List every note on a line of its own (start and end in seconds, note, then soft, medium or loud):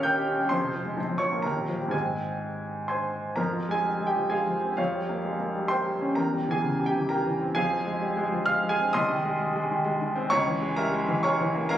0.00 0.47 D#2 medium
0.00 0.54 A#2 soft
0.00 0.39 G3 soft
0.00 0.54 A#3 medium
0.00 0.28 C#4 medium
0.00 0.16 G4 medium
0.00 0.05 A#4 medium
0.00 0.12 C#5 medium
0.00 0.53 D#5 medium
0.00 0.53 F5 medium
0.00 0.54 D#6 loud
0.00 0.53 F6 medium
0.00 0.50 G6 medium
0.04 0.23 A#4 medium
0.04 0.48 G5 medium
0.16 0.35 G4 medium
0.28 0.46 C#4 medium
0.39 0.51 G3 medium
0.49 0.96 F2 medium
0.49 1.16 C5 medium
0.49 1.20 C6 medium
0.62 0.81 C3 soft
0.73 0.92 F3 soft
0.85 0.97 G#3 soft
0.96 1.42 A#1 medium
1.08 1.27 F2 soft
1.18 1.39 F3 soft
1.18 1.42 C#5 medium
1.18 1.43 C#6 medium
1.32 1.44 A#3 soft
1.42 1.91 D#2 medium
1.42 1.89 A#4 soft
1.42 1.92 A#5 medium
1.56 1.76 A#2 soft
1.68 1.88 F3 soft
1.80 1.93 G3 soft
1.88 3.31 G#2 medium
1.88 3.32 D#3 soft
1.88 3.32 G#3 soft
1.88 3.33 C4 soft
1.88 2.88 G#5 medium
1.92 2.85 G#4 soft
2.88 3.34 C5 medium
2.88 3.34 G#5 soft
2.88 3.37 C6 medium
3.36 4.74 F2 medium
3.36 3.70 A#4 medium
3.36 3.72 A#5 medium
3.53 3.78 F3 soft
3.69 3.94 G#3 soft
3.69 4.05 G#4 medium
3.69 4.07 G#5 medium
3.84 4.00 G3 soft
4.00 4.25 G#3 soft
4.07 4.30 G4 medium
4.07 4.31 G5 medium
4.16 4.41 F3 soft
4.30 4.56 G#3 medium
4.30 4.75 G#4 soft
4.30 4.75 F5 medium
4.30 4.77 G#5 medium
4.47 4.72 F3 soft
4.63 4.78 C4 soft
4.77 6.13 F2 medium
4.77 5.66 F4 medium
4.77 5.66 C#5 medium
4.77 5.70 F5 medium
4.94 5.18 G3 soft
5.09 5.33 A#3 soft
5.24 5.39 G#3 soft
5.39 5.64 A#3 soft
5.54 5.79 G3 soft
5.68 5.95 A#3 medium
5.68 6.13 C5 medium
5.68 6.13 G5 medium
5.68 6.16 C6 medium
5.86 6.11 G3 soft
6.01 6.17 C#4 medium
6.15 7.52 E2 medium
6.15 6.49 A#4 soft
6.15 6.49 G5 soft
6.15 6.51 A#5 medium
6.33 6.58 G3 soft
6.48 6.73 E3 medium
6.48 6.84 G#4 medium
6.48 6.86 G#5 medium
6.64 6.79 C#3 soft
6.80 7.04 G3 medium
6.86 7.08 G4 medium
6.86 7.09 G5 medium
6.95 7.19 E3 medium
7.09 7.35 G3 medium
7.09 7.52 A#4 medium
7.09 7.53 G5 medium
7.09 7.55 A#5 medium
7.25 7.50 E3 medium
7.40 7.55 C4 medium
7.55 8.91 F2 medium
7.55 8.44 G#4 medium
7.55 8.44 F5 medium
7.55 8.47 G#5 loud
7.71 7.95 F3 soft
7.86 8.11 G#3 medium
8.01 8.17 G3 soft
8.17 8.41 G#3 medium
8.32 8.57 F3 medium
8.46 8.73 G#3 medium
8.46 8.69 F5 medium
8.46 8.70 F6 loud
8.63 8.89 F3 medium
8.69 8.93 G#4 medium
8.69 8.94 G#5 medium
8.79 8.95 C4 medium
8.93 10.28 C2 medium
8.93 10.28 D#5 medium
8.93 10.28 C6 medium
8.93 10.31 D#6 loud
9.09 9.34 D#3 medium
9.25 9.50 G#3 medium
9.40 9.56 G3 medium
9.56 9.80 G#3 medium
9.70 9.95 D#3 medium
9.86 10.10 G#3 medium
10.01 10.26 D#3 medium
10.16 10.32 C4 medium
10.30 11.66 C#2 loud
10.30 10.74 C#5 medium
10.30 10.74 A#5 medium
10.30 10.77 C#6 loud
10.47 10.72 E3 medium
10.62 10.87 G#3 medium
10.76 10.93 G3 medium
10.76 11.21 A#4 medium
10.76 11.21 E5 medium
10.76 11.22 A#5 loud
10.93 11.18 G#3 medium
11.08 11.33 E3 medium
11.23 11.49 G#3 medium
11.23 11.67 C#5 medium
11.23 11.67 A#5 medium
11.23 11.70 C#6 medium
11.40 11.65 E3 medium
11.55 11.71 A#3 medium
11.69 11.78 D2 medium
11.69 11.78 A#4 medium
11.69 11.78 F5 medium
11.69 11.78 A#5 loud